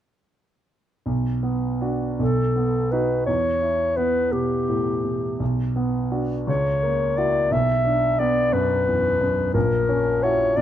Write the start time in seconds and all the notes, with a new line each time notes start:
1.06 B1
1.43 B3
1.81 D4 F#4
2.19 B1 A4
2.56 B3
2.91 D#4 F#4 B4
3.26 E2 C#5
3.62 E4
3.97 B3 B4
4.32 B2 G4
4.68 A2
5.04 B2
5.40 B1
5.76 B3
6.11 D4 F#4
6.47 C#2 C#5
6.83 A#3
7.17 E4 F#4 D5
7.51 B1 E5
7.85 D4
8.19 B3 D5
8.52 F#2 B4
8.87 E2
9.21 F#2
9.54 A#1 A#4
9.89 C#4
10.23 E4 F#4 C#5
10.57 B1 D5